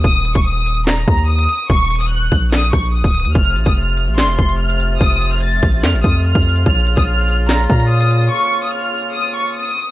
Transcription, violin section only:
\new Staff \with { instrumentName = "Violin section" } { \time 4/4 \key bes \minor \tempo 4 = 145 ees'''8. des'''16 ees'''4 bes''8 bes''8 ees'''4 | des'''8. ees'''16 ges'''4 ees'''8 des'''8 ees'''4 | f'''8. ees'''16 f'''4 c'''8 c'''8 f'''4 | ees'''8. f'''16 a'''4 f'''8 ees'''8 f'''4 |
f'''8. ees'''16 f'''4 bes''8 bes''8 ees'''4 | des'''8. ees'''16 f'''4 ees'''8 des'''8 ees'''4 | }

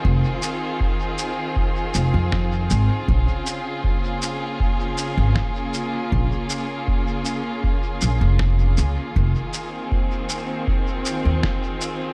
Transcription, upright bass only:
\new Staff \with { instrumentName = "Upright bass" } { \clef bass \time 4/4 \key f \minor \tempo 4 = 79 f,,16 r2 r16 f,,16 f,8. aes,,16 r16 | bes,,16 r2 r8 aes,,16 r4 | bes,,16 r2 r16 bes,,16 f,,8. des,16 r16 | f,,16 r2 r8 ees,16 r4 | }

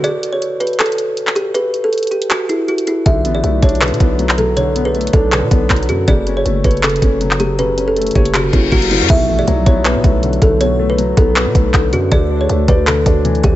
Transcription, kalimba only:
\new Staff \with { instrumentName = "Kalimba" } { \time 4/4 \key b \minor \tempo 4 = 159 d''8. cis''8. b'8 a'4. g'8 | b'8. a'8. g'8 fis'8 e'8 fis'8 e'8 | e''8. d''8. cis''8 b'4. a'8 | cis''8. b'8. a'8 b'4. fis'8 |
d''8. cis''8. b'8 a'4. g'8 | b'8. a'8. g'8 fis'8 e'8 fis'8 e'8 | e''8. d''8. cis''8 b'4. a'8 | cis''8. b'8. a'8 b'4. fis'8 |
d''8. cis''8. b'8 a'4. g'8 | }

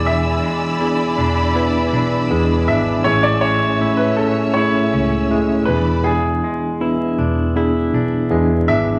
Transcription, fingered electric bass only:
\new Staff \with { instrumentName = "Fingered electric bass" } { \clef bass \time 4/4 \key e \mixolydian \tempo 4 = 80 e,,8 r4 e,,4 b,,8 e,8 gis,,8 | a,,2~ a,,8 cis,4 e,,8~ | e,,8 r4 e,,4 b,,8 e,8 gis,,8 | }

